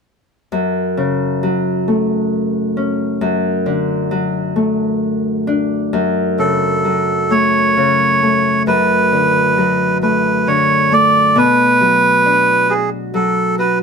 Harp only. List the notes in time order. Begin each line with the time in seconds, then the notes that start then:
0.52 F#2
0.97 C#3
1.43 F#3
1.88 A3
2.77 C#4
3.21 F#2
3.66 D3
4.11 F#3
4.56 A3
5.47 D4
5.93 F#2
6.38 C#3
6.85 F#3
7.30 A3
7.77 C#3
8.23 A3
8.67 F#2
9.12 D3
9.58 F#3
10.03 A3
10.47 D3
10.91 A3
11.36 B2
11.81 F#3
12.25 D4
12.69 F#4
13.14 F#3
13.59 F#4